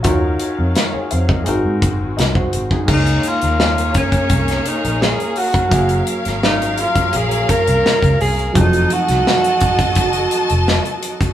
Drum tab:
CC |----------------|x---------------|----------------|----------------|
HH |x-x-x-x-x-x-x-x-|-xxx-xxxxxxx-xox|xxxx-xxxxxxx-xox|xxxx-xxxxxxx-xxx|
SD |----o-------o---|----o----o--o---|---oo-------o---|---oo-------o---|
BD |o------o--o--o-o|o-----ooo------o|o------o--o--o--|o-----ooo------o|